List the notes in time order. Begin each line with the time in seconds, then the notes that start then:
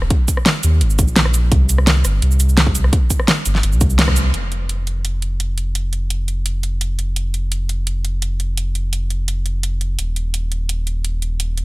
0.02 cross-stick
0.10 kick, closed hi-hat
0.28 kick, closed hi-hat, cabasa
0.37 cross-stick
0.46 snare, closed hi-hat
0.63 D#2, closed hi-hat, cabasa
0.81 G1, closed hi-hat
0.90 cabasa
0.99 A#1, kick, closed hi-hat, cabasa
1.08 cabasa
1.16 snare, closed hi-hat
1.25 cross-stick
1.34 closed hi-hat, cabasa
1.52 C2, kick, closed hi-hat
1.69 closed hi-hat, cabasa
1.78 cross-stick
1.87 snare, closed hi-hat
2.04 G1, cross-stick, closed hi-hat, cabasa
2.22 C2, closed hi-hat
2.31 cabasa
2.40 closed hi-hat, cabasa
2.49 cabasa
2.57 snare, closed hi-hat
2.67 kick
2.75 closed hi-hat, cabasa
2.84 cross-stick
2.93 kick, closed hi-hat
3.10 kick, closed hi-hat, cabasa
3.19 cross-stick
3.28 snare, closed hi-hat
3.46 G1, closed hi-hat, cabasa
3.55 snare
3.63 G1, closed hi-hat
3.72 C2, cabasa
3.81 kick, closed hi-hat, cabasa
3.90 cabasa
3.99 snare, closed hi-hat
4.08 kick, cross-stick
4.16 closed hi-hat, cabasa
4.34 F1, closed hi-hat
4.52 closed hi-hat
4.69 closed hi-hat
4.87 closed hi-hat
5.05 closed hi-hat
5.22 closed hi-hat
5.40 closed hi-hat
5.58 closed hi-hat
5.75 closed hi-hat
5.93 closed hi-hat
6.10 closed hi-hat
6.28 closed hi-hat
6.46 closed hi-hat
6.63 closed hi-hat
6.81 closed hi-hat
6.99 closed hi-hat
7.16 closed hi-hat
7.34 closed hi-hat
7.52 closed hi-hat
7.69 closed hi-hat
7.87 closed hi-hat
8.05 closed hi-hat
8.22 closed hi-hat
8.40 closed hi-hat
8.57 closed hi-hat
8.75 closed hi-hat
8.93 closed hi-hat
9.10 closed hi-hat
9.28 closed hi-hat
9.46 closed hi-hat
9.63 closed hi-hat
9.81 closed hi-hat
9.99 D#1, closed hi-hat
10.16 closed hi-hat
10.34 closed hi-hat
10.52 closed hi-hat
10.69 closed hi-hat
10.87 closed hi-hat
11.04 closed hi-hat
11.22 closed hi-hat
11.40 closed hi-hat
11.57 closed hi-hat